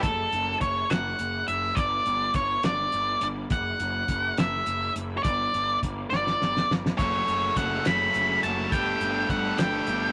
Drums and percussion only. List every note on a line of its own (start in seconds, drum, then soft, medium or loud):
0.03 kick loud
0.03 closed hi-hat medium
0.32 closed hi-hat medium
0.61 kick medium
0.61 closed hi-hat medium
0.90 snare loud
0.90 closed hi-hat medium
1.19 closed hi-hat medium
1.48 closed hi-hat medium
1.77 kick loud
1.77 closed hi-hat medium
2.06 closed hi-hat medium
2.34 kick medium
2.34 closed hi-hat medium
2.63 snare loud
2.63 closed hi-hat medium
2.92 closed hi-hat medium
3.21 closed hi-hat medium
3.50 kick loud
3.50 closed hi-hat loud
3.80 closed hi-hat medium
4.08 kick medium
4.08 closed hi-hat medium
4.37 snare loud
4.37 closed hi-hat medium
4.66 closed hi-hat medium
4.96 closed hi-hat medium
5.24 kick loud
5.24 closed hi-hat medium
5.54 closed hi-hat soft
5.83 kick medium
5.83 closed hi-hat medium
6.13 snare medium
6.27 snare medium
6.42 snare medium
6.57 snare medium
6.71 snare medium
6.86 snare medium
6.99 kick loud
6.99 closed hi-hat medium
7.28 closed hi-hat medium
7.56 kick medium
7.56 closed hi-hat medium
7.85 snare loud
7.85 closed hi-hat medium
8.14 closed hi-hat medium
8.43 closed hi-hat medium
8.72 kick loud
8.72 closed hi-hat medium
9.01 closed hi-hat medium
9.29 kick medium
9.29 closed hi-hat medium
9.58 snare loud
9.58 closed hi-hat medium
9.87 closed hi-hat medium